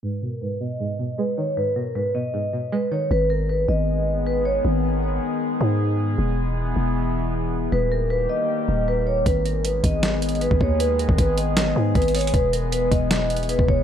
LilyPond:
<<
  \new Staff \with { instrumentName = "Vibraphone" } { \time 4/4 \key gis \minor \tempo 4 = 156 b'8 ais'8 b'8 dis''4. b'8 cis''8 | b'8 ais'8 b'8 dis''4. b'8 cis''8 | b'8 ais'8 b'8 dis''4. b'8 cis''8 | r1 |
r1 | b'8 ais'8 b'8 dis''4. b'8 cis''8 | b'8 ais'8 b'8 dis''4. b'8 cis''8 | b'8 ais'8 b'8 dis''4. b'8 cis''8 |
b'8 ais'8 b'8 dis''4. b'8 cis''8 | }
  \new Staff \with { instrumentName = "Ambient pad" } { \time 4/4 \key gis \minor << { r1 | r1 | <gis gis'>1~ | <gis gis'>1~ |
<gis gis'>1 | <g g'>1 | <gis gis'>1~ | <gis gis'>1~ |
<gis gis'>1 | } \\ { r1 | r1 | <dis b>1~ | <dis b>1 |
<e b>1 | <dis ais>1 | <dis b>1~ | <dis b>1 |
<e b>1 | } >> }
  \new Staff \with { instrumentName = "Synth pluck" } { \clef bass \time 4/4 \key gis \minor gis,8 b,8 gis,8 b,8 gis,8 b,8 gis8 dis8 | gis,8 b,8 gis,8 b,8 gis,8 b,8 gis8 dis8 | r1 | r1 |
r1 | r1 | r1 | r1 |
r1 | }
  \new Staff \with { instrumentName = "808-style bass" } { \clef bass \time 4/4 \key gis \minor r1 | r1 | gis,,4. gis,,2~ gis,,8 | gis,,4. r4 gis,4. |
e,,4. e,,2~ e,,8 | dis,,4. r4 dis,,4. | gis,,4. gis,,4.~ gis,,16 gis,,16 dis,8~ | dis,8. gis,,16 gis,,4. gis,8 gis,,4 |
e,,4. e,,4.~ e,,16 e,,16 e,,8 | }
  \new DrumStaff \with { instrumentName = "Drums" } \drummode { \time 4/4 r4 r4 r4 r4 | r4 r4 r4 r4 | r4 r4 r4 r4 | r4 r4 r4 r4 |
r4 r4 r4 r4 | r4 r4 r4 r4 | <hh bd>8 hh8 hh8 <hh bd>8 \tuplet 3/2 { <hh sn>16 r16 r16 hh16 hh16 hh16 } hh16 bd16 bd8 | hh8 hh16 bd16 <hh bd>8 hh8 <hh sn>4 \tuplet 3/2 { <hh bd>16 hh16 hh16 <hh hho>16 hh16 hh16 } |
<hh bd>8 hh8 hh8 <hh bd>8 \tuplet 3/2 { <hh sn>16 r16 r16 hh16 hh16 hh16 } hh16 bd16 bd8 | }
>>